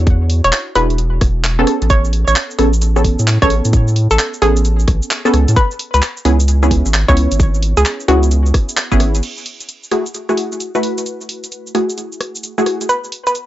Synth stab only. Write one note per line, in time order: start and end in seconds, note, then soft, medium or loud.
0.00 0.74 D4 medium
0.00 0.74 E4 medium
0.00 0.74 F#4 medium
0.00 0.73 C#5 loud
0.75 1.55 D4 medium
0.75 1.55 E4 medium
0.75 1.55 F#4 medium
0.75 1.55 G#4 medium
1.59 2.57 B3 medium
1.59 2.57 C#4 medium
1.59 2.57 G#4 medium
1.59 2.57 A4 loud
2.59 2.71 B3 medium
2.59 2.71 C#4 medium
2.59 2.71 G#4 medium
2.59 2.71 A4 medium
2.96 3.39 B3 medium
2.96 3.39 C#4 medium
2.96 3.39 G#4 medium
2.96 3.39 A4 medium
3.42 4.40 B3 medium
3.42 4.40 C#4 medium
3.42 4.40 G#4 medium
3.42 4.40 A4 loud
4.42 5.22 B3 medium
4.42 5.22 C#4 medium
4.42 5.22 G#4 medium
4.42 5.22 A4 medium
5.25 5.55 B3 medium
5.25 5.55 C#4 medium
5.25 5.55 G#4 medium
5.25 5.55 A4 loud
6.25 6.38 B3 medium
6.25 6.38 C#4 medium
6.25 6.38 E4 medium
6.25 6.38 G#4 medium
6.63 7.05 B3 medium
6.63 7.05 C#4 medium
6.63 7.05 E4 medium
6.63 7.05 G#4 medium
7.08 8.06 B3 medium
7.08 8.06 C#4 medium
7.08 8.06 E4 medium
7.08 8.06 C#5 loud
8.08 8.88 B3 medium
8.08 8.88 C#4 medium
8.08 8.88 E4 medium
8.08 8.88 G#4 medium
8.92 9.22 B3 medium
8.92 9.22 C#4 medium
8.92 9.22 E4 medium
8.92 9.22 G#4 loud
9.91 10.04 A3 medium
9.91 10.04 E4 medium
9.91 10.04 F#4 medium
9.91 10.04 G#4 medium
10.29 10.71 A3 medium
10.29 10.71 E4 medium
10.29 10.71 F#4 medium
10.29 10.71 G#4 medium
10.75 11.73 A3 medium
10.75 11.73 E4 medium
10.75 11.73 F#4 medium
10.75 11.73 B4 medium
11.75 12.55 A3 medium
11.75 12.55 E4 medium
11.75 12.55 F#4 medium
11.75 12.55 G#4 medium
12.58 12.88 A3 medium
12.58 12.88 E4 medium
12.58 12.88 F#4 medium
12.58 12.88 G#4 loud